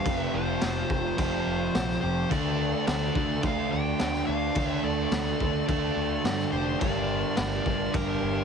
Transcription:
Already playing: C5 F5
0.05 F1 F2 C3 F3, kick, crash
0.15 B4
0.20 E5
0.34 F1 F4 C5
0.61 F1, snare, crash
0.90 F1, kick
1.17 F1 F2 C3 F3 F4 C5, kick, crash
1.47 F1
1.75 A#1, snare, crash
1.90 snare
2.01 F1 F2 C3 F3 G4 C5
2.30 D2 D3 A3 D4 A4 D5, kick, crash
2.87 D2 A4 D5, snare, crash
3.14 D2 D3 A3 D4, kick
3.42 D2 D3 A3 D4 D5 F5, kick, crash
3.70 D2 D5 G5
3.99 D2 D3 A3 D4, snare, crash
4.14 snare
4.26 D2 A3 D4 D5 F5
4.30 D3
4.54 D2 D3 A3 D4, kick, crash
4.59 D4
4.65 C#5
4.69 E5
4.84 D2 A4 D5
5.12 D2, snare, crash
5.39 D2 D3 A3 D4, kick
5.68 D2 D3 A3 D4 A4 D5, kick, crash
5.96 D2
6.24 G2 D3 A3 D4, snare, crash
6.39 snare
6.52 F1 D3 A3 D4 G4 C5
6.80 G1 G2 D3 G3 A#4 D5, kick, crash
7.37 G1 A#4 D5, snare, crash
7.64 G1 G2 D3 G3, kick
7.92 G1 G2 D3 G4 A#4, kick, crash
7.97 G3
8.22 G1

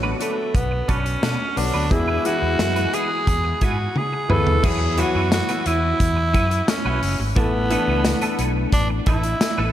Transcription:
Already playing: A1 D3 F#3 B3 F#4
0.03 D4 F#4 B4
0.20 A3 D4 F#4 B4, closed hi-hat
0.37 muted clean electric guitar stroke
0.54 B1 B3, muted clean electric guitar stroke, kick, closed hi-hat
0.71 muted clean electric guitar stroke
0.88 B1 C#4 D4 F#4 B4, kick, closed hi-hat
1.06 muted clean electric guitar stroke, closed hi-hat
1.23 B2 D4 F#4 B4, snare, closed hi-hat
1.40 muted clean electric guitar stroke
1.56 B1 D3 F#3 B3 D4 F#4, muted clean electric guitar stroke, open hi-hat
1.74 D2 D4 F#4 B4
1.90 E2 E3 G#3 B3 E4 G#4, muted clean electric guitar stroke, kick, closed hi-hat
2.08 E4 G#4 B4
2.25 E3 G#3 B3 E4 F#4 G#4 B4, closed hi-hat
2.41 E2, muted clean electric guitar stroke
2.59 F#2, muted clean electric guitar stroke, snare, closed hi-hat
2.76 E4 G#4 B4, closed hi-hat
2.93 E4 G#4 B4, closed hi-hat
3.10 muted clean electric guitar stroke
3.27 E2, muted clean electric guitar stroke, kick, closed hi-hat
3.44 muted clean electric guitar stroke
3.61 G#2 E4 F#4 G#4 B4, kick, closed hi-hat
3.78 muted clean electric guitar stroke
3.96 G#4, high tom
4.13 muted clean electric guitar stroke
4.29 D2 E3 G#3 B3 E4 G#4 A4 B4, mid tom
4.47 muted clean electric guitar stroke, floor tom
4.63 E2 E3 F#3 B3 E4 F#4 G#4 B4, kick, crash
4.81 muted clean electric guitar stroke
4.97 E3 F#3 B3 E4 F#4 B4, closed hi-hat
5.15 F#2 E4 F#4 B4
5.32 F#4, muted clean electric guitar stroke, snare, closed hi-hat, tambourine
5.49 E4 F#4 B4, closed hi-hat
5.66 E2 E4 F#4 B4, closed hi-hat
5.83 muted clean electric guitar stroke
6.00 E2, kick, closed hi-hat
6.16 muted clean electric guitar stroke
6.33 F#2 E4 F#4 B4, kick, closed hi-hat
6.51 muted clean electric guitar stroke, closed hi-hat
6.68 C#4, muted clean electric guitar stroke, snare, closed hi-hat, tambourine
6.85 B1 E4 F#4 B4
7.02 F#1, muted clean electric guitar stroke, open hi-hat
7.19 G#1, muted clean electric guitar stroke
7.36 A1 E3 A3 B3 E4 A4 B4, kick, closed hi-hat
7.53 muted clean electric guitar stroke
7.70 E3 A3 B3 D4 E4 A4 B4, closed hi-hat
7.87 C#2 E4 A4 B4
8.05 muted clean electric guitar stroke, snare, closed hi-hat, tambourine
8.21 E4 A4 B4, closed hi-hat
8.39 B1 E4 A4 B4, closed hi-hat
8.56 muted clean electric guitar stroke
8.72 A1 D4, kick, closed hi-hat
8.90 muted clean electric guitar stroke
9.06 A1 E4 A4 B4, kick, closed hi-hat
9.23 muted clean electric guitar stroke, closed hi-hat
9.41 muted clean electric guitar stroke, snare, closed hi-hat, tambourine
9.58 A1 E4 A4 B4

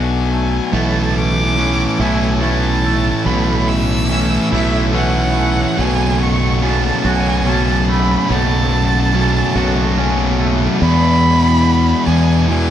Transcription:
Already playing: B1 B2 F#3 A3 B3 D4 F#4 A4 G#5
0.31 A3
0.72 B1 A2 B2 E3 A3 C#4 E4 B4 A5
1.17 D6
1.57 A2 E3 A3 C#4 E4
1.99 B1 A2 E3 A3 C#4 E4 G#5
2.41 A2 E3 A3 C#4 E4 A5
2.86 A3
3.25 B1 A2 B2 E3 A3 C#4 E4 B5
3.68 E6
4.09 A2 E3 A3 C#4 E4
4.51 B1 A2 E3 A3 C#4 E4 E5
4.93 A2 E3 A3 C#4 E4 F#5
5.37 A3
5.77 B1 F#2 B2 C#3 F#3 A3 C#4 A4 G#5
6.23 C#6
6.61 F#2 B2 C#3 F#3 A3 C#4
6.65 A5
7.04 B1 F#2 B2 C#3 F#3 A3 C#4 F#4 G#5
7.45 F#2 B2 C#3 F#3 A3 C#4 A5
7.89 A3 B5
8.28 B1 F#2 B2 C#3 F#3 A3 C#4 A5
9.13 F#2 B2 C#3 F#3 A3 C#4
9.55 B1 F#2 B2 C#3 F#3 A3 C#4 F#4
9.97 F#2 B2 C#3 F#3 A3 C#4
10.40 A3
10.80 E2 B2 E3 G#3 B3 D4 E4 G#4 B5
12.06 E2 E3 G#3 B3 E4 G#5
12.48 E2 B2 E3 G#5

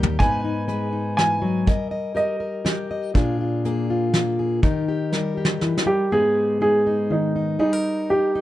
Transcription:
Already playing: D#2 D#3 G3 G4 A#4
0.03 floor tom
0.19 G#2 B3 D#4 B4 G#5, kick, closed hi-hat
0.45 D#4
0.68 G#3 B4, closed hi-hat
0.93 D#4
1.17 E3 G#5, snare, closed hi-hat
1.42 F#3
1.67 G3 A#4 D#5, kick, closed hi-hat
1.91 D#5
2.15 G4 A#4 D#5, closed hi-hat
2.40 A#4
2.65 G4, snare, closed hi-hat
2.91 D#5
3.14 A#2 D4 F4 G#4, kick, closed hi-hat
3.41 F4
3.65 A#3 G#4, closed hi-hat
3.90 F4
4.14 A#3, snare, closed hi-hat
4.39 G#4
4.62 D#3 D#4 G4 A#4, kick, closed hi-hat
4.88 G4
5.12 G3 A#4, snare
5.37 G4
5.45 snare
5.61 E3, snare
5.78 snare
5.86 G3 G4
6.11 G#2 G#3 B3 D#4 G#4
6.61 G#3 D#4 G#4
6.87 D#4
7.10 D#3 D#4
7.36 D#4
7.59 G3 D#4 G#4
7.73 A#4
8.10 D#4 G4
8.35 D#4

